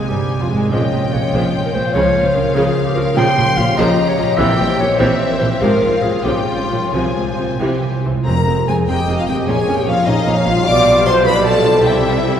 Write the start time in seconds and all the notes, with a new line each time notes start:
Already playing: C3 G#3 C4 D#4 G#4 C5 D#5 G#5
0.09 G1 G2 G3 G4 G#4
0.30 D#5
0.40 F2 F3 F4
0.49 G#1 G#2 G#3 G#4 C5
0.71 A#1 A#2 F3 G#3 C#4 F4 D#5 G5
0.92 A#1 A#2 F3 G#3 A#3
1.13 A#1 A#2 G#3 F4 C#5
1.33 A#1 A#2 F3 G#3 G#4 C5
1.55 F5
1.66 A#4
1.74 A#1 A#2 G#3 C5 C#5
1.94 C#2 C#3 F3 C#5 F5
2.15 C#2 C#3 F3 A#3 C#4
2.26 C5
2.35 C#2 C#3 F3 F4 A#4
2.54 C#2 C#3 F3 G#4 A#4
2.76 F5
2.86 G4
2.95 C#2 C#3 F3 A#4 C#5
3.15 A#1 A#2 C#3 F3 C#4 G4 G5 C6
3.36 A#1 A#2 F3 G3
3.57 A#1 A#2 F3 F4 F5
3.77 A#1 A#2 C#3 F3 G4 D#5 A#5
3.98 F5
4.08 C#5
4.17 A#1 A#2 F3 C#5 D#5
4.38 A#1 A#2 C3 E3 C4 E5 G5
4.58 A#1 A#2 E3 G3
4.78 A#1 A#2 E3 G4 C#5
4.98 A#1 A#2 C3 E3 C5 E5
5.20 G5
5.30 A#4
5.39 A#1 A#2 E3 C5
5.60 G#1 G#2 C3 F3 F4 A#4 F5
5.82 G#1 G#2 F3 G#3
6.02 G#1 G#2 F3 F4 G#4 C5
6.24 A#1 A#2 C#3 F3 C#4 G4 G5
6.48 G3 F4
6.70 A#1 A#2 F3 G4 C#5
6.94 C2 C3 F3 C4 C5 G#5
7.16 C2 C3 F3 G#3
7.37 C2 C3 F3 F4 C5
7.60 C2 C3 E3 G4
7.83 G3
8.05 C2 C3 E3 E4 C5
8.10 F2
8.14 G#3
8.19 F4
8.23 F1 G#3 C4 A#4 C5 A#5
8.27 F2
8.47 F1 F2 G#3 C4
8.68 F1 F2 G#3 C4 G#4 G#5
8.88 F1 F2 G#3 C4 G4 D#5 G5
9.08 F1 F2 G#3 C4
9.19 F4 F5
9.28 F1 F2 A#2 G#3 C4 G4 G5
9.35 F3
9.39 F4
9.44 A#1 C#4 G#4 C#5
9.48 A#2 F3 G#5
9.67 A#1 A#2 F3 C#4
9.78 G4 G5
9.86 A#1 A#2 F3 C#4 F4 F5
10.07 A#1 A#2 F3 C#4 D#4 D#5 F5
10.26 A#1 A#2 F3 C#4
10.36 C#4 C#5
10.45 A#1 A#2 B2 F3 C#4 F4 F5
10.52 G3
10.57 F4
10.61 D5
10.65 B1 B2 G3 F4 D5 D6
11.06 C5 C6
11.24 G3 F4 B4 D5 B5
11.45 A4 A5
11.68 C3
11.73 G3
11.78 E4
11.82 C3 G3 E4 G4 C5 G5
11.86 C2 E5